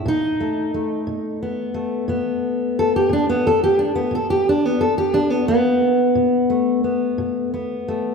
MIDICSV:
0, 0, Header, 1, 2, 480
1, 0, Start_track
1, 0, Tempo, 678733
1, 37, Time_signature, 12, 3, 24, 8
1, 5761, End_track
2, 0, Start_track
2, 0, Title_t, "Steel-string acoustic guitar"
2, 0, Program_c, 0, 25
2, 39, Note_on_c, 0, 47, 81
2, 59, Note_on_c, 0, 63, 101
2, 286, Note_on_c, 0, 57, 48
2, 471, Note_off_c, 0, 47, 0
2, 522, Note_off_c, 0, 57, 0
2, 525, Note_on_c, 0, 57, 46
2, 756, Note_on_c, 0, 47, 66
2, 1005, Note_off_c, 0, 63, 0
2, 1008, Note_on_c, 0, 59, 50
2, 1191, Note_off_c, 0, 47, 0
2, 1230, Note_off_c, 0, 57, 0
2, 1233, Note_on_c, 0, 57, 50
2, 1470, Note_on_c, 0, 47, 68
2, 1476, Note_off_c, 0, 59, 0
2, 1478, Note_on_c, 0, 59, 52
2, 1908, Note_off_c, 0, 47, 0
2, 1973, Note_on_c, 0, 69, 96
2, 2088, Note_off_c, 0, 69, 0
2, 2094, Note_on_c, 0, 67, 86
2, 2187, Note_on_c, 0, 47, 72
2, 2208, Note_off_c, 0, 67, 0
2, 2211, Note_off_c, 0, 59, 0
2, 2214, Note_on_c, 0, 62, 90
2, 2327, Note_off_c, 0, 62, 0
2, 2330, Note_on_c, 0, 59, 89
2, 2446, Note_off_c, 0, 59, 0
2, 2452, Note_on_c, 0, 69, 95
2, 2567, Note_off_c, 0, 69, 0
2, 2571, Note_on_c, 0, 67, 93
2, 2627, Note_off_c, 0, 47, 0
2, 2679, Note_on_c, 0, 62, 79
2, 2687, Note_off_c, 0, 67, 0
2, 2794, Note_off_c, 0, 62, 0
2, 2797, Note_on_c, 0, 59, 86
2, 2906, Note_on_c, 0, 47, 77
2, 2920, Note_off_c, 0, 59, 0
2, 2928, Note_off_c, 0, 57, 0
2, 2935, Note_on_c, 0, 69, 84
2, 3040, Note_off_c, 0, 69, 0
2, 3043, Note_on_c, 0, 67, 91
2, 3163, Note_off_c, 0, 67, 0
2, 3176, Note_on_c, 0, 62, 89
2, 3291, Note_off_c, 0, 62, 0
2, 3291, Note_on_c, 0, 59, 84
2, 3347, Note_off_c, 0, 47, 0
2, 3399, Note_on_c, 0, 69, 87
2, 3407, Note_off_c, 0, 59, 0
2, 3518, Note_off_c, 0, 69, 0
2, 3521, Note_on_c, 0, 67, 92
2, 3631, Note_on_c, 0, 47, 78
2, 3634, Note_on_c, 0, 62, 96
2, 3642, Note_off_c, 0, 67, 0
2, 3749, Note_off_c, 0, 62, 0
2, 3749, Note_on_c, 0, 59, 89
2, 3868, Note_off_c, 0, 59, 0
2, 3877, Note_on_c, 0, 59, 96
2, 4069, Note_off_c, 0, 47, 0
2, 4351, Note_on_c, 0, 47, 70
2, 4595, Note_on_c, 0, 57, 51
2, 4788, Note_off_c, 0, 47, 0
2, 4829, Note_off_c, 0, 59, 0
2, 4837, Note_on_c, 0, 59, 44
2, 5078, Note_on_c, 0, 47, 70
2, 5327, Note_off_c, 0, 59, 0
2, 5330, Note_on_c, 0, 59, 49
2, 5511, Note_off_c, 0, 47, 0
2, 5557, Note_off_c, 0, 57, 0
2, 5575, Note_on_c, 0, 57, 47
2, 5761, Note_off_c, 0, 57, 0
2, 5761, Note_off_c, 0, 59, 0
2, 5761, End_track
0, 0, End_of_file